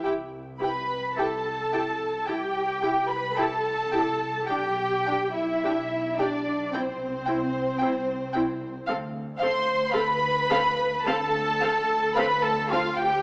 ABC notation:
X:1
M:4/4
L:1/16
Q:1/4=55
K:C
V:1 name="Violin section"
z2 b2 a4 g3 b a4 | g3 e3 d2 c8 | z2 c'2 b4 a4 b a f g |]
V:2 name="Violin section"
g2 g2 g2 g2 g2 g2 g2 g2 | g2 g2 g2 g2 g2 g2 g2 g2 | f2 f2 f2 f2 f2 f2 f2 f2 |]
V:3 name="Cello section"
z2 B2 A4 G3 B A4 | G3 E3 D2 C8 | z2 c2 B4 A4 B A F G |]
V:4 name="Viola section"
[EG]2 [EG]2 [EG]2 [EG]2 [EG]2 [EG]2 [EG]2 [EG]2 | [DG]2 [DG]2 [DG]2 [DG]2 [CE]2 [CE]2 [CE]2 [CE]2 | [CA]2 [CA]2 [CA]2 [CA]2 [CA]2 [CA]2 [CA]2 [CA]2 |]
V:5 name="Double bass section" clef=bass
C,,4 C,,4 C,,4 C,,4 | B,,,4 B,,,4 C,,4 C,,4 | D,,4 D,,4 D,,4 D,,4 |]